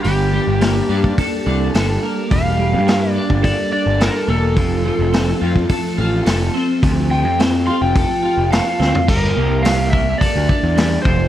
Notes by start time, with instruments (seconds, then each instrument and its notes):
Already playing: string machine G3 A#3 D4 A5, clean electric guitar D4
0.03 picked electric bass G1, clean electric guitar G3, electric slide guitar G4, open hi-hat
0.33 clean electric guitar G3
0.47 picked electric bass G1
0.61 clean electric guitar A#3, snare, open hi-hat
0.89 picked electric bass G2, clean electric guitar D4
1.04 kick
1.18 clean electric guitar A4, kick, open hi-hat
1.46 picked electric bass C2, clean electric guitar D4
1.74 picked electric bass G1, clean electric guitar A4, snare, open hi-hat
2.03 clean electric guitar A#3
2.31 picked electric bass E1, clean electric guitar G3, electric slide guitar F5, kick, open hi-hat
2.59 clean electric guitar G3
2.73 picked electric bass G2
2.87 clean electric guitar A#3, snare, open hi-hat
3.12 clean electric guitar D4, electric slide guitar D5
3.30 picked electric bass G1, kick
3.43 clean electric guitar A4, electric slide guitar D5, kick, open hi-hat
3.72 clean electric guitar D4, electric slide guitar D5
3.86 picked electric bass G1
4.00 clean electric guitar A4, electric slide guitar A#4, snare, open hi-hat
4.28 picked electric bass E1, clean electric guitar A#3, electric slide guitar A4
4.55 picked electric bass F1, string machine F3 A3 C4 A4, clean electric guitar F3, kick, open hi-hat
4.85 clean electric guitar F3
4.99 picked electric bass F1
5.13 clean electric guitar C4, snare, open hi-hat
5.41 picked electric bass F2, clean electric guitar F4
5.56 kick
5.69 clean electric guitar A4, kick, open hi-hat
5.98 picked electric bass A1, clean electric guitar F4
6.26 picked electric bass F1, clean electric guitar A4, snare, open hi-hat
6.54 clean electric guitar C4
6.82 picked electric bass D2, clean electric guitar F3, string machine G4, kick, open hi-hat
7.11 clean electric guitar F3, electric slide guitar G5
7.25 picked electric bass F2
7.39 clean electric guitar C4, snare, open hi-hat
7.67 clean electric guitar F4, electric slide guitar C6
7.82 picked electric bass F1, electric slide guitar G5
7.95 clean electric guitar A4, kick, open hi-hat
8.23 clean electric guitar F4
8.37 picked electric bass F1
8.51 clean electric guitar A4, electric slide guitar F5, snare, open hi-hat
8.80 picked electric bass D2, clean electric guitar C4, snare
8.95 floor tom
9.08 picked electric bass G1, clean electric guitar G3, electric slide guitar A#4, kick, crash
9.24 snare
9.36 picked electric bass C2, clean electric guitar A#3
9.63 clean electric guitar G3, electric slide guitar F5, snare, open hi-hat
9.91 clean electric guitar A#3, electric slide guitar E5, kick
10.18 clean electric guitar A4, electric slide guitar D5, kick, open hi-hat
10.36 picked electric bass D2
10.49 clean electric guitar D4, kick
10.63 picked electric bass E2
10.76 clean electric guitar G3, snare, open hi-hat
11.02 picked electric bass F1, clean electric guitar F3, electric slide guitar C5, kick